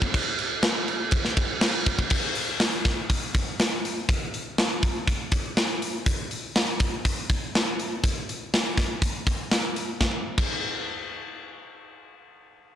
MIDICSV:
0, 0, Header, 1, 2, 480
1, 0, Start_track
1, 0, Tempo, 493827
1, 140, Time_signature, 4, 2, 24, 8
1, 12396, End_track
2, 0, Start_track
2, 0, Title_t, "Drums"
2, 18, Note_on_c, 9, 36, 94
2, 115, Note_off_c, 9, 36, 0
2, 137, Note_on_c, 9, 36, 91
2, 139, Note_on_c, 9, 49, 87
2, 234, Note_off_c, 9, 36, 0
2, 236, Note_off_c, 9, 49, 0
2, 375, Note_on_c, 9, 49, 68
2, 472, Note_off_c, 9, 49, 0
2, 611, Note_on_c, 9, 38, 117
2, 611, Note_on_c, 9, 49, 82
2, 708, Note_off_c, 9, 38, 0
2, 708, Note_off_c, 9, 49, 0
2, 854, Note_on_c, 9, 49, 61
2, 951, Note_off_c, 9, 49, 0
2, 1079, Note_on_c, 9, 49, 79
2, 1089, Note_on_c, 9, 36, 113
2, 1176, Note_off_c, 9, 49, 0
2, 1187, Note_off_c, 9, 36, 0
2, 1212, Note_on_c, 9, 38, 36
2, 1309, Note_off_c, 9, 38, 0
2, 1328, Note_on_c, 9, 49, 69
2, 1332, Note_on_c, 9, 36, 88
2, 1425, Note_off_c, 9, 49, 0
2, 1429, Note_off_c, 9, 36, 0
2, 1568, Note_on_c, 9, 38, 108
2, 1568, Note_on_c, 9, 49, 97
2, 1665, Note_off_c, 9, 38, 0
2, 1665, Note_off_c, 9, 49, 0
2, 1809, Note_on_c, 9, 49, 74
2, 1812, Note_on_c, 9, 36, 91
2, 1906, Note_off_c, 9, 49, 0
2, 1909, Note_off_c, 9, 36, 0
2, 1931, Note_on_c, 9, 36, 88
2, 2028, Note_off_c, 9, 36, 0
2, 2042, Note_on_c, 9, 57, 96
2, 2050, Note_on_c, 9, 36, 104
2, 2139, Note_off_c, 9, 57, 0
2, 2148, Note_off_c, 9, 36, 0
2, 2287, Note_on_c, 9, 46, 54
2, 2384, Note_off_c, 9, 46, 0
2, 2527, Note_on_c, 9, 38, 99
2, 2527, Note_on_c, 9, 46, 68
2, 2624, Note_off_c, 9, 38, 0
2, 2624, Note_off_c, 9, 46, 0
2, 2769, Note_on_c, 9, 38, 30
2, 2769, Note_on_c, 9, 46, 45
2, 2771, Note_on_c, 9, 36, 79
2, 2866, Note_off_c, 9, 38, 0
2, 2866, Note_off_c, 9, 46, 0
2, 2869, Note_off_c, 9, 36, 0
2, 3011, Note_on_c, 9, 36, 71
2, 3013, Note_on_c, 9, 46, 65
2, 3108, Note_off_c, 9, 36, 0
2, 3110, Note_off_c, 9, 46, 0
2, 3253, Note_on_c, 9, 36, 78
2, 3256, Note_on_c, 9, 46, 47
2, 3350, Note_off_c, 9, 36, 0
2, 3354, Note_off_c, 9, 46, 0
2, 3496, Note_on_c, 9, 38, 99
2, 3496, Note_on_c, 9, 46, 67
2, 3594, Note_off_c, 9, 38, 0
2, 3594, Note_off_c, 9, 46, 0
2, 3742, Note_on_c, 9, 46, 51
2, 3839, Note_off_c, 9, 46, 0
2, 3973, Note_on_c, 9, 36, 107
2, 3975, Note_on_c, 9, 46, 64
2, 4071, Note_off_c, 9, 36, 0
2, 4072, Note_off_c, 9, 46, 0
2, 4217, Note_on_c, 9, 46, 47
2, 4314, Note_off_c, 9, 46, 0
2, 4455, Note_on_c, 9, 38, 109
2, 4455, Note_on_c, 9, 46, 63
2, 4552, Note_off_c, 9, 38, 0
2, 4552, Note_off_c, 9, 46, 0
2, 4693, Note_on_c, 9, 36, 69
2, 4693, Note_on_c, 9, 46, 48
2, 4790, Note_off_c, 9, 46, 0
2, 4791, Note_off_c, 9, 36, 0
2, 4933, Note_on_c, 9, 36, 73
2, 4935, Note_on_c, 9, 46, 60
2, 5030, Note_off_c, 9, 36, 0
2, 5033, Note_off_c, 9, 46, 0
2, 5167, Note_on_c, 9, 46, 54
2, 5170, Note_on_c, 9, 36, 78
2, 5264, Note_off_c, 9, 46, 0
2, 5268, Note_off_c, 9, 36, 0
2, 5414, Note_on_c, 9, 38, 96
2, 5414, Note_on_c, 9, 46, 64
2, 5512, Note_off_c, 9, 38, 0
2, 5512, Note_off_c, 9, 46, 0
2, 5658, Note_on_c, 9, 46, 59
2, 5756, Note_off_c, 9, 46, 0
2, 5893, Note_on_c, 9, 36, 98
2, 5898, Note_on_c, 9, 46, 64
2, 5990, Note_off_c, 9, 36, 0
2, 5995, Note_off_c, 9, 46, 0
2, 6133, Note_on_c, 9, 46, 48
2, 6230, Note_off_c, 9, 46, 0
2, 6374, Note_on_c, 9, 38, 102
2, 6374, Note_on_c, 9, 46, 72
2, 6471, Note_off_c, 9, 38, 0
2, 6471, Note_off_c, 9, 46, 0
2, 6607, Note_on_c, 9, 46, 51
2, 6611, Note_on_c, 9, 36, 70
2, 6704, Note_off_c, 9, 46, 0
2, 6708, Note_off_c, 9, 36, 0
2, 6853, Note_on_c, 9, 36, 70
2, 6857, Note_on_c, 9, 46, 62
2, 6950, Note_off_c, 9, 36, 0
2, 6954, Note_off_c, 9, 46, 0
2, 7092, Note_on_c, 9, 36, 78
2, 7098, Note_on_c, 9, 46, 51
2, 7190, Note_off_c, 9, 36, 0
2, 7195, Note_off_c, 9, 46, 0
2, 7342, Note_on_c, 9, 38, 95
2, 7342, Note_on_c, 9, 46, 65
2, 7439, Note_off_c, 9, 38, 0
2, 7439, Note_off_c, 9, 46, 0
2, 7577, Note_on_c, 9, 46, 50
2, 7674, Note_off_c, 9, 46, 0
2, 7811, Note_on_c, 9, 36, 98
2, 7819, Note_on_c, 9, 46, 66
2, 7909, Note_off_c, 9, 36, 0
2, 7916, Note_off_c, 9, 46, 0
2, 8060, Note_on_c, 9, 46, 47
2, 8157, Note_off_c, 9, 46, 0
2, 8299, Note_on_c, 9, 38, 99
2, 8299, Note_on_c, 9, 46, 65
2, 8396, Note_off_c, 9, 38, 0
2, 8396, Note_off_c, 9, 46, 0
2, 8529, Note_on_c, 9, 36, 72
2, 8536, Note_on_c, 9, 38, 27
2, 8536, Note_on_c, 9, 46, 47
2, 8627, Note_off_c, 9, 36, 0
2, 8633, Note_off_c, 9, 38, 0
2, 8633, Note_off_c, 9, 46, 0
2, 8767, Note_on_c, 9, 36, 69
2, 8767, Note_on_c, 9, 46, 63
2, 8864, Note_off_c, 9, 36, 0
2, 8864, Note_off_c, 9, 46, 0
2, 9007, Note_on_c, 9, 36, 70
2, 9011, Note_on_c, 9, 46, 48
2, 9105, Note_off_c, 9, 36, 0
2, 9108, Note_off_c, 9, 46, 0
2, 9248, Note_on_c, 9, 38, 90
2, 9248, Note_on_c, 9, 46, 63
2, 9345, Note_off_c, 9, 38, 0
2, 9345, Note_off_c, 9, 46, 0
2, 9489, Note_on_c, 9, 46, 50
2, 9587, Note_off_c, 9, 46, 0
2, 9726, Note_on_c, 9, 38, 70
2, 9727, Note_on_c, 9, 36, 84
2, 9823, Note_off_c, 9, 38, 0
2, 9824, Note_off_c, 9, 36, 0
2, 10086, Note_on_c, 9, 57, 82
2, 10088, Note_on_c, 9, 36, 96
2, 10184, Note_off_c, 9, 57, 0
2, 10185, Note_off_c, 9, 36, 0
2, 12396, End_track
0, 0, End_of_file